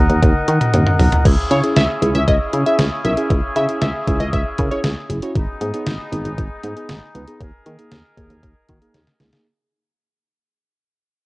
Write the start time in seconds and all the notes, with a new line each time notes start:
Already playing: D#3 D#4 A#4 F#5
0.10 D#2, closed hi-hat
0.23 D#2, kick, closed hi-hat, high tom
0.48 D#3, closed hi-hat
0.61 closed hi-hat, mid tom
0.74 D#2, closed hi-hat, mid tom
0.87 mid tom
1.00 B1, floor tom, open hi-hat
1.12 closed hi-hat, floor tom
1.25 C#2 C#3 C#4 E4 G#4, kick, closed hi-hat, crash
1.51 C#3 C#4 E4 G#4 C#5, closed hi-hat
1.64 C#4 E4 G#4, closed hi-hat
1.76 C#2 E5, snare, closed hi-hat
2.02 C#2 C#4 E4 G#4, closed hi-hat
2.15 C#2 E5, closed hi-hat
2.28 C#2 D#5, kick, closed hi-hat
2.53 C#3 C#4 E4 G#4, closed hi-hat
2.66 C#4 E4 G#4 E5, closed hi-hat
2.79 C#2, snare, closed hi-hat
3.05 B1 C#4 E4 A#4 E5, closed hi-hat
3.17 C#4 E4 G#4, closed hi-hat
3.30 C#2, kick, closed hi-hat
3.56 C#3 C#4 E4 G#4 E5, closed hi-hat
3.69 C#4 E4 G#4, closed hi-hat
3.81 C#2 E5, snare, closed hi-hat
4.07 C#2 C#4 E4 G#4, kick, closed hi-hat
4.20 C#2 D#5, closed hi-hat
4.33 C#2 E5, kick, closed hi-hat
4.58 C#3 C#4 E4 A#4, kick, closed hi-hat
4.71 C#4 E4 G#4 C#5, closed hi-hat
4.84 C#2, snare, closed hi-hat
5.10 F#1 C#4 E4 G#4, closed hi-hat
5.22 C#4 E4 F#4, closed hi-hat
5.35 G#1 G#3 B3 D#4, kick, closed hi-hat
5.61 G#2 B3 D#4 G#4, closed hi-hat
5.74 B3 D#4 G#4, closed hi-hat
5.87 G#1, snare, closed hi-hat
6.12 G#1 B3 D#4 G#4, closed hi-hat
6.25 G#1, closed hi-hat
6.38 G#1, kick, closed hi-hat
6.63 G#2 B3 D#4 G#4, closed hi-hat
6.76 B3 D#4 G#4, closed hi-hat
6.89 G#1, snare, closed hi-hat
7.15 C#2 B3 D#4 B4, closed hi-hat
7.28 B3 D#4 G#4, closed hi-hat
7.41 D#2 D#3 D#4 G#4 A#4, kick, closed hi-hat
7.66 D#3 A#3 D#4 G#4, closed hi-hat
7.79 A#3 D#4 G#4, closed hi-hat
7.92 D#2, snare, closed hi-hat
8.18 D#2 A#3 D#4 G#4, kick, closed hi-hat
8.30 D#2, closed hi-hat
8.43 D#2, kick, closed hi-hat
8.69 D#3 A#3 D#4 F#4, kick, closed hi-hat
8.82 A#3 D#4 G#4, closed hi-hat
8.94 D#2, snare, closed hi-hat
9.07 snare
9.20 C#2 A#3 D#4 G#4, snare, closed hi-hat
9.33 A#3 D#4 G#4, snare, closed hi-hat